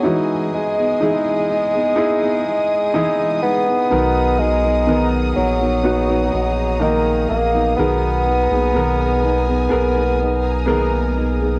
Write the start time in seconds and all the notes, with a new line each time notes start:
Already playing: F#3 B3 D#4 F#4 G#4 D#5 G#5 D#6
0.03 E3 G#3 B3 D#4 E4 F#4 G#4
0.53 G#3 B3 D#4 G#4
0.77 B3 D#4 G#4
1.01 E3 G#3 B3 D#4 E4 G#4
1.49 G#3 B3 D#4 G#4
1.73 B3 D#4 G#4
1.96 D#4 E4 G#4
2.22 B3 D#4 G#4
2.46 G#3 B3 D#4 G#4
2.94 E3 G#3 B3 D#4 E4 G#4
3.42 G#3 B3 D#4 G#4
3.66 B3 D#4 G#4
3.90 B1 B2 D#3 F#3 B3 D#4 A#4 F#5 A#5
4.39 F#3 G#3 B3 D#4 A#4
4.63 F#3 B3 D#4 A#4
4.87 B2 D#3 F#3 B3 D#4 A#4
5.36 A#1 F#3 B3 D#4 A#4
5.59 F#3 B3 D#4 A#4
5.83 B3 D#4 F#4 A#5
6.08 F#3 B3 D#4 A#4
6.33 A#1 F#3 B3 D#4 A#4
6.79 D#3 F#3 A#3 B3 D#4 A#4
7.29 A#1 F#3 A#3 B3 D#4 A#4
7.53 F#3 B3 D#4 A#4
7.77 B1 B2 D#3 B3 D#4 G#4 A#4 G#5 A#5
8.27 A#3 B3 D#4 G#4
8.51 B1 A#3 B3 D#4 G#4
8.74 B1 B2 D#3 B3 D#4 G#4 A#4
9.23 A#3 B3 D#4 G#4
9.47 B3 D#4 G#4
9.69 B1 B3 G#4 A#4 A#5
9.96 A#3 B3 D#4 G#4
10.21 B3 D#4 G#4
10.66 B2 D#3 A#3 B3 D#4 G#4 A#4
11.16 A#3 B3 D#4 G#4
11.41 A#3 B3 D#4 G#4